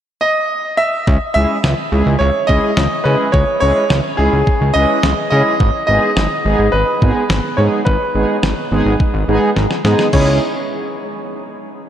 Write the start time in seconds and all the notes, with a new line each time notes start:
0.21 D#5
0.77 E5
1.07 C#2, kick
1.34 C#2 G#3 C#4 E4 G#4 E5
1.64 C#2, snare
1.92 C#2 G#3 C#4 E4 G#4
2.06 C#2
2.19 C#2 C#5
2.47 C#2 G#3 C#4 E4 G#4 D#5, kick
2.77 C#2, snare
3.04 C#3 G#3 C#4 E4 G#4 B4
3.32 C#2 C#5, kick
3.60 C#2 G#3 C#4 E4 G#4 C#5
3.90 C#2, snare
4.17 C#2 G#3 C#4 E4 G#4
4.33 C#2
4.47 kick
4.61 C#2
4.74 C#2 G#3 C#4 E4 B4 D#5
5.03 C#2, snare
5.30 C#3 G#3 C#4 E4 G#4 D#5
5.60 G#1, kick
5.87 G#1 G#3 B3 D#4 G#4 D#5
6.17 G#1, snare
6.45 G#1 G#3 B3 D#4 G#4
6.59 G#1
6.72 G#1 B4
7.02 G#1 G#3 B3 D#4 G#4, kick
7.30 G#1, snare
7.57 G#2 G#3 B3 D#4 G#4 C#5
7.85 G#1 B4, kick
8.15 G#1 G#3 B3 D#4 G#4
8.43 G#1, snare
8.71 G#1 G#3 B3 D#4 G#4
8.86 G#1
9.00 kick
9.14 G#1
9.28 G#1 G#3 B3 D#4 G#4
9.56 G#1, snare
9.71 snare
9.85 G#2 G#3 B3 D#4 G#4, snare
9.99 snare
10.13 C#2 G#3 C#4 E4 G#4 C#5, kick, crash